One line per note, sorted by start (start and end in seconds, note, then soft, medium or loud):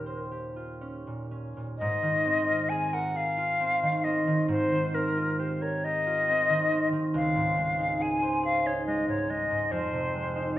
0.00 1.83 D#2 soft
0.00 1.06 A#2 soft
0.00 0.80 C#4 soft
0.00 2.18 D#4 soft
0.00 0.55 F4 soft
0.00 0.30 G4 soft
0.00 0.29 A#4 medium
0.00 0.99 A#4 soft
0.06 3.96 C5 soft
0.31 1.83 G4 soft
0.56 2.47 F4 soft
0.81 1.30 C#4 soft
1.07 1.55 A#2 soft
1.31 1.82 C#4 soft
1.57 1.83 A#2 soft
1.78 4.47 G#2 medium
1.78 2.71 D#5 medium
2.02 3.82 D#3 medium
2.25 3.59 C4 medium
2.48 3.36 F4 soft
2.69 3.14 G#4 medium
2.69 2.95 G#5 medium
2.93 5.61 A#4 medium
2.93 3.18 F#5 medium
3.15 7.05 G#4 medium
3.15 4.06 F5 loud
3.38 5.16 F4 medium
3.60 4.04 C4 medium
3.83 4.26 D#3 medium
4.04 4.93 C4 medium
4.04 4.49 D#5 medium
4.27 4.53 D#3 medium
4.48 7.18 G#2 medium
4.48 4.96 C5 medium
4.72 6.48 D#3 medium
4.95 6.28 C4 soft
4.95 5.41 A#4 medium
5.17 6.05 F4 soft
5.39 5.84 G4 medium
5.39 5.63 C5 medium
5.62 7.19 A#4 medium
5.62 5.86 C#5 medium
5.84 7.19 G4 medium
5.84 6.88 D#5 loud
6.07 9.97 F4 soft
6.29 6.70 C4 medium
6.49 6.91 D#3 medium
6.72 10.59 C4 medium
6.92 7.18 D#3 medium
7.14 9.75 C#2 medium
7.14 8.04 F5 medium
7.36 9.07 G#2 medium
7.58 8.86 G#3 medium
7.79 8.64 D#4 soft
8.00 8.42 G#4 medium
8.00 8.44 G#5 medium
8.22 10.59 C5 medium
8.43 10.59 G#4 medium
8.43 8.68 F5 loud
8.66 10.34 D#4 medium
8.66 8.87 C#5 medium
8.87 9.29 G#3 medium
8.87 9.08 D#5 medium
9.08 9.49 G#2 medium
9.08 9.32 C#5 medium
9.30 10.14 G#3 medium
9.30 9.73 D#5 medium
9.51 9.75 G#2 medium
9.71 10.59 F2 medium
9.71 10.58 C5 medium
9.93 10.59 C3 medium
10.15 10.59 G#3 medium
10.35 10.59 D#4 soft